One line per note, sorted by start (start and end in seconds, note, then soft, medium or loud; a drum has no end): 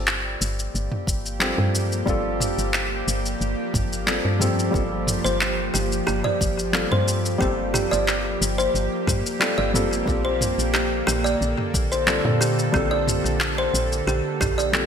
0.00 0.37 G1 medium
0.00 10.04 F3 medium
0.00 1.36 G3 medium
0.00 14.86 A#3 medium
0.00 1.37 C4 medium
0.00 1.38 F4 medium
0.00 10.04 G4 medium
0.00 1.38 A4 medium
0.07 clap medium
0.07 shaker soft
0.41 0.69 G1 medium
0.41 shaker medium
0.59 shaker soft
0.75 0.89 G1 medium
0.75 shaker soft
0.92 mid tom medium
1.07 1.54 G1 medium
1.07 kick loud
1.07 shaker medium
1.26 shaker soft
1.39 2.03 G3 medium
1.39 2.03 C4 medium
1.39 2.04 F4 medium
1.39 2.04 A4 medium
1.39 clap loud
1.39 shaker soft
1.58 2.03 G2 loud
1.58 mid tom medium
1.75 shaker medium
1.92 shaker soft
2.06 2.53 G1 medium
2.06 4.03 G3 medium
2.06 4.03 C4 medium
2.06 4.04 F4 medium
2.06 4.05 A4 loud
2.06 kick loud
2.06 shaker soft
2.40 mid tom medium
2.40 shaker medium
2.58 3.03 G1 medium
2.58 shaker soft
2.74 clap loud
2.74 shaker soft
3.07 3.35 G1 medium
3.07 shaker medium
3.26 shaker soft
3.41 3.55 G1 medium
3.41 shaker soft
3.74 4.20 G1 medium
3.74 kick loud
3.74 mid tom medium
3.74 shaker medium
3.93 shaker soft
4.06 4.36 G3 medium
4.06 4.37 C4 medium
4.06 4.37 F4 medium
4.06 4.37 A4 medium
4.06 clap loud
4.06 shaker soft
4.25 4.70 G2 loud
4.39 4.69 G3 medium
4.39 4.70 C4 medium
4.39 4.70 F4 medium
4.39 4.70 A4 medium
4.39 mid tom medium
4.39 shaker medium
4.59 shaker soft
4.71 5.20 G1 loud
4.71 6.69 G3 medium
4.71 6.69 C4 medium
4.71 6.70 F4 medium
4.71 kick loud
4.75 6.71 A4 medium
4.75 shaker soft
5.07 mid tom medium
5.07 shaker medium
5.25 5.70 G1 medium
5.25 5.72 C5 medium
5.25 shaker soft
5.41 clap loud
5.41 shaker soft
5.74 6.02 G1 loud
5.74 6.06 G4 medium
5.74 shaker medium
5.92 shaker soft
6.07 6.22 G1 medium
6.07 6.24 G4 medium
6.07 shaker soft
6.24 6.40 D5 medium
6.24 mid tom medium
6.41 6.87 G1 medium
6.41 kick loud
6.41 shaker medium
6.59 shaker soft
6.73 7.36 G3 medium
6.73 7.36 C4 medium
6.73 7.37 F4 medium
6.73 7.37 A4 medium
6.73 clap loud
6.73 shaker soft
6.91 7.37 G2 loud
6.91 7.39 C5 medium
6.91 mid tom medium
7.08 shaker medium
7.26 shaker soft
7.38 7.87 G1 medium
7.38 9.36 G3 medium
7.38 9.36 C4 medium
7.38 9.37 F4 medium
7.38 7.72 G4 medium
7.38 kick loud
7.38 shaker soft
7.42 9.38 A4 loud
7.74 7.91 G4 medium
7.74 mid tom medium
7.74 shaker medium
7.91 8.37 G1 medium
7.91 8.07 D5 medium
7.91 shaker soft
8.08 clap medium
8.08 shaker soft
8.41 8.69 G1 medium
8.41 shaker medium
8.58 9.06 C5 medium
8.58 shaker soft
8.74 8.89 G1 medium
8.74 shaker soft
9.07 9.22 G2 medium
9.07 9.39 G4 medium
9.07 kick loud
9.07 mid tom medium
9.07 shaker medium
9.26 shaker soft
9.39 9.70 G3 medium
9.39 9.70 C4 medium
9.39 9.70 F4 medium
9.39 9.57 G4 loud
9.39 9.71 A4 medium
9.39 clap medium
9.39 shaker soft
9.58 10.03 G1 loud
9.58 9.73 D5 medium
9.73 10.03 G3 medium
9.73 10.04 C4 medium
9.73 10.04 F4 medium
9.73 10.04 A4 medium
9.73 mid tom medium
9.73 shaker medium
9.93 shaker soft
10.05 10.54 A#1 medium
10.05 14.86 D3 medium
10.05 12.03 G3 medium
10.05 12.03 C4 medium
10.05 12.04 F4 medium
10.05 14.86 A4 medium
10.05 kick loud
10.05 shaker soft
10.10 12.05 A4 medium
10.25 10.72 C5 medium
10.41 mid tom medium
10.41 shaker medium
10.58 11.03 A#1 medium
10.58 shaker soft
10.74 11.06 G4 medium
10.74 clap medium
10.74 shaker soft
11.07 11.36 A#1 loud
11.07 11.24 G4 medium
11.07 shaker medium
11.24 11.40 D5 medium
11.24 shaker soft
11.41 11.55 A#1 medium
11.41 shaker soft
11.58 mid tom medium
11.74 12.20 A#1 medium
11.74 kick loud
11.74 shaker medium
11.92 12.39 C5 medium
11.92 shaker soft
12.07 12.70 G3 medium
12.07 12.70 C4 medium
12.07 12.70 F4 medium
12.07 12.71 A4 medium
12.07 clap medium
12.07 shaker soft
12.25 12.70 A#2 loud
12.25 mid tom medium
12.41 12.73 G4 medium
12.41 shaker medium
12.59 shaker soft
12.72 13.20 A#1 medium
12.72 14.69 G3 medium
12.72 14.70 C4 medium
12.72 14.71 F4 medium
12.72 12.91 G4 loud
12.72 kick loud
12.72 shaker soft
12.76 14.71 A4 loud
12.91 13.06 D5 medium
13.07 mid tom medium
13.07 shaker medium
13.25 13.70 A#1 medium
13.25 shaker soft
13.40 clap loud
13.40 shaker soft
13.58 14.06 C5 medium
13.74 14.02 A#1 medium
13.74 shaker medium
13.92 shaker soft
14.07 14.22 A#1 medium
14.07 14.39 G4 medium
14.07 shaker soft
14.41 14.86 A#1 medium
14.41 14.57 G4 loud
14.41 kick loud
14.41 mid tom medium
14.41 shaker medium
14.58 14.73 D5 medium
14.58 shaker soft
14.72 14.86 G3 medium
14.72 14.86 C4 medium
14.72 14.86 F4 medium
14.72 14.86 A4 medium
14.72 clap medium
14.72 shaker soft